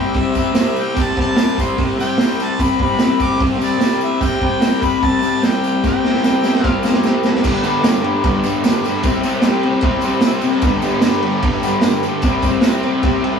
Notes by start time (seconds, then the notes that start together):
Already playing: C3 G3 C4 G5
0.14 C3 G3 C4 G4 E5, kick, open hi-hat
0.18 C5 E5
0.34 G3 C4, kick, tambourine
0.38 E5
0.53 C3 G3 C4, snare, open hi-hat, tambourine
0.59 G4 C5 E5
0.65 snare
0.76 G5, tambourine
0.94 C3 G3 C4 G4, kick, open hi-hat, tambourine
0.99 C5 E5 A5
1.17 G3 C4 G4 E5, kick
1.21 C5 A5
1.36 C3 G3 C4 G4 C5 E5, snare, open hi-hat, tambourine
1.58 G3 C4 C6, kick, tambourine
1.77 C3 G3 C4, kick, open hi-hat
1.82 G4 C5 E5
1.99 G3 C4 G5, tambourine
2.18 C3 G3 C5 E5, snare, open hi-hat, tambourine
2.22 C4 G4
2.29 snare
2.40 A5, tambourine
2.59 C3 G3 G4 C5 E5 B5, kick, open hi-hat, tambourine
2.63 C4
2.80 C4 G4 C5 G5 B5, kick
2.84 G3
2.99 C3 G4 C5 E5, snare, open hi-hat, tambourine
3.03 G3 C4
3.20 G3 C4 D6, kick, tambourine
3.38 C3 G3 C4 G4 E5, kick, open hi-hat
3.43 C5
3.59 G3 C4 D5, tambourine
3.79 C3 G3 C4, snare, open hi-hat, tambourine
3.85 G4 C5 E5
3.91 snare
4.01 E5, tambourine
4.21 C3 G3 C4 G4 G5, kick, open hi-hat, tambourine
4.25 C5 E5
4.40 G3 C4, kick
4.45 G4 C5 D5 G5
4.61 C3 G3 C4 G4 C5 D5, snare, open hi-hat, tambourine
4.82 G3 C4 B5, kick, tambourine
5.01 C3 G3 C4 G4 C5 E5 A5, kick, open hi-hat
5.22 G3 C4, tambourine
5.43 C3 G3 C4 G4 C5 E5 G5, snare, open hi-hat, tambourine
5.53 snare
5.64 tambourine
5.84 C3 G3 C4 G4 C5 E5, kick, snare, tambourine
5.88 G5
6.04 G3 C4 G4 C5 D5, snare, tambourine
6.14 snare
6.23 C3 G3 G4 C5 D5, snare, tambourine
6.28 C4
6.44 C4 B5, snare, tambourine
6.48 G3
6.55 snare
6.62 C3 G3 G4 C5 E5 F5 A5, kick, snare, tambourine
6.67 C4
6.83 C4, snare, tambourine
6.87 G3
6.91 G5, snare
7.02 C3 G3 G4 C5 E5 G5, snare, tambourine
7.07 C4
7.23 D5, snare, tambourine
7.35 snare
7.40 G2 G4 B4 D5, tambourine
7.44 D3 G3, kick, crash
7.64 G2 D3 G3, tambourine, crash
7.79 G4 B4 D5
7.84 G2 D3 G3, snare, tambourine, crash
8.03 G2 D3 G3, crash
8.21 G2 D3 G4 B4 D5, kick, tambourine, crash
8.26 G3
8.44 G2 D3 G3, tambourine, crash
8.62 G2 D3 G3 G4 B4 D5, snare, tambourine, crash
8.74 snare
8.84 G2 D3 G3, tambourine, crash
8.94 snare
9.02 C3 G3 C4 G4 C5 E5, kick, tambourine, crash
9.23 C3 G3 C4, tambourine, crash
9.42 C3 G3 C4 G4 C5 G5, snare, tambourine, crash
9.63 C3 G3 C4, crash
9.81 C3 G3 G4 E5, kick, tambourine, crash
9.85 C4 C5
10.01 C3, tambourine, crash
10.05 G3 C4
10.21 C3 G3 G4 C5 E5, snare, tambourine, crash
10.25 C4
10.31 snare
10.41 C3 G3 C4, tambourine, crash
10.52 snare
10.62 G2 D3 G3 G4 B4, kick, tambourine, crash
10.66 D5
10.82 G2 D3 G3, tambourine, crash
11.01 G2 D3 G3, snare, tambourine, crash
11.06 G4 B4 D5
11.22 G2 D3 G3, crash
11.42 G2 D3 G3 B4, kick, tambourine, crash
11.47 G4 D5
11.63 G2 D3 G3, tambourine, crash
11.81 G2 D3 G3, snare, tambourine, crash
11.85 G4 B4 D5
12.03 G2 D3 G3, tambourine, crash
12.22 C3 G3 C4, kick, tambourine, crash
12.28 G4 C5 E5
12.42 C3 G3 C4, kick, tambourine, crash
12.61 C3 G3 C4, snare, tambourine, crash
12.68 G4 C5 E5
12.83 C3 G3 C4, tambourine, crash
13.03 C3 G3 C4 G4 C5 E5, kick, tambourine, crash
13.23 C3 G3 C4, crash